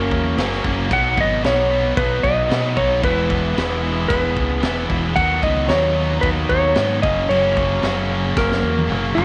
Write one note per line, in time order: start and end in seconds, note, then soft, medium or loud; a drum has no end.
0.00 0.10 F#1 medium
0.00 0.37 F#3 medium
0.00 0.37 A#3 medium
0.00 0.38 C#4 medium
0.00 0.61 A#4 medium
0.11 0.36 E2 medium
0.11 kick medium
0.36 0.62 F#1 medium
0.36 0.89 C#3 medium
0.36 0.65 F#3 medium
0.36 0.64 A#3 loud
0.36 0.63 C#4 medium
0.36 snare loud
0.36 crash medium
0.52 snare soft
0.64 0.90 F#1 medium
0.64 0.89 F#3 medium
0.64 0.90 A#3 medium
0.64 0.89 C#4 medium
0.64 kick medium
0.90 1.16 B1 loud
0.90 1.42 B2 medium
0.90 1.18 F#3 loud
0.90 1.17 B3 loud
0.90 1.15 D#4 loud
0.90 1.19 F#5 loud
0.90 kick loud
0.90 crash medium
1.16 1.43 G#1 medium
1.16 1.42 F#3 medium
1.16 1.44 B3 medium
1.16 1.44 D#4 medium
1.16 kick medium
1.21 1.44 D#5 loud
1.43 1.95 B1 medium
1.43 1.97 B2 medium
1.43 1.71 F#3 loud
1.43 1.70 B3 medium
1.43 1.68 D#4 loud
1.43 1.97 C#5 loud
1.43 snare loud
1.43 crash medium
1.69 2.49 F#3 medium
1.69 2.51 B3 medium
1.69 2.50 D#4 medium
1.97 2.23 B1 medium
1.97 2.24 B4 loud
1.97 kick loud
1.97 crash medium
2.23 2.49 B1 loud
2.23 2.78 D#5 loud
2.23 kick medium
2.49 3.01 B2 medium
2.49 2.76 B2 medium
2.49 2.78 F#3 loud
2.49 2.77 B3 medium
2.49 2.75 D#4 medium
2.49 snare loud
2.49 crash medium
2.76 3.02 B1 loud
2.76 3.02 F#3 medium
2.76 3.04 B3 medium
2.76 3.01 D#4 medium
2.76 3.02 C#5 loud
2.76 kick medium
3.02 3.55 E1 loud
3.02 3.53 E3 loud
3.02 3.30 G#3 loud
3.02 3.30 B3 loud
3.02 3.27 E4 loud
3.02 4.06 B4 loud
3.02 kick loud
3.02 crash medium
3.29 3.54 G#3 medium
3.29 3.55 B3 medium
3.29 3.55 E4 medium
3.29 kick medium
3.54 4.08 E1 loud
3.54 4.08 E3 medium
3.54 3.83 G#3 loud
3.54 3.82 B3 loud
3.54 3.80 E4 loud
3.54 snare loud
3.54 crash medium
3.82 4.62 G#3 medium
3.82 4.62 B3 medium
3.82 4.63 E4 medium
4.08 4.35 E1 medium
4.08 4.85 B4 medium
4.08 kick loud
4.08 crash medium
4.37 4.62 C#2 medium
4.37 kick medium
4.62 4.88 E1 medium
4.62 5.14 E3 medium
4.62 4.89 G#3 medium
4.62 4.88 B3 medium
4.62 4.87 E4 medium
4.62 snare loud
4.62 crash medium
4.88 5.15 E1 loud
4.88 5.15 G#3 medium
4.88 5.14 B3 medium
4.88 5.14 E4 medium
4.88 kick medium
5.15 5.42 D#2 loud
5.15 5.66 D#3 loud
5.15 5.44 F#3 loud
5.15 5.41 B3 loud
5.15 5.40 D#4 loud
5.15 5.41 F#5 loud
5.15 kick loud
5.15 crash medium
5.41 5.68 C#2 medium
5.41 5.67 F#3 medium
5.41 5.68 B3 medium
5.41 5.69 D#4 medium
5.41 5.70 D#5 loud
5.41 kick medium
5.67 6.21 D#2 loud
5.67 6.21 D#3 loud
5.67 5.97 F#3 loud
5.67 5.95 B3 loud
5.67 5.94 D#4 loud
5.67 6.18 C#5 medium
5.67 snare medium
5.67 crash medium
5.95 6.75 F#3 medium
5.95 6.76 B3 medium
5.95 6.77 D#4 medium
6.21 6.48 D#2 medium
6.21 6.29 B4 loud
6.21 kick loud
6.21 crash medium
6.49 6.75 D#2 medium
6.49 7.02 C#5 loud
6.49 kick medium
6.75 7.02 G#2 loud
6.75 7.01 D#3 medium
6.75 7.01 F#3 loud
6.75 7.02 B3 loud
6.75 7.02 D#4 medium
6.75 snare loud
6.75 crash medium
7.02 7.28 F#1 loud
7.02 7.28 F#2 medium
7.02 7.29 C#3 medium
7.02 7.29 F#3 medium
7.02 7.30 A#3 medium
7.02 7.30 C#4 medium
7.02 7.27 D#5 medium
7.02 kick loud
7.29 7.81 F#1 loud
7.29 7.80 F#2 medium
7.29 7.81 C#3 loud
7.29 7.57 F#3 medium
7.29 7.56 A#3 loud
7.29 7.55 C#4 loud
7.29 8.39 C#5 loud
7.29 crash medium
7.56 7.81 F#3 medium
7.56 7.82 A#3 medium
7.56 7.83 C#4 medium
7.56 kick medium
7.81 8.35 F#1 loud
7.81 8.35 F#2 medium
7.81 8.36 C#3 loud
7.81 8.09 F#3 medium
7.81 8.08 A#3 loud
7.81 8.07 C#4 loud
7.81 snare medium
7.81 crash medium
8.08 8.88 F#3 medium
8.08 8.89 A#3 medium
8.08 8.90 C#4 medium
8.37 8.62 F#1 medium
8.37 9.13 A#4 medium
8.37 kick loud
8.37 snare medium
8.52 snare medium
8.63 8.88 E2 loud
8.78 high tom medium
8.87 9.14 F#1 medium
8.87 9.25 C#3 medium
8.87 9.16 F#3 medium
8.87 9.16 A#3 medium
8.87 9.14 C#4 medium
8.92 mid tom loud
9.15 9.25 F#1 medium
9.15 9.25 F#3 medium
9.15 9.25 A#3 medium
9.15 9.25 C#4 medium
9.15 9.25 F#4 loud
9.15 floor tom loud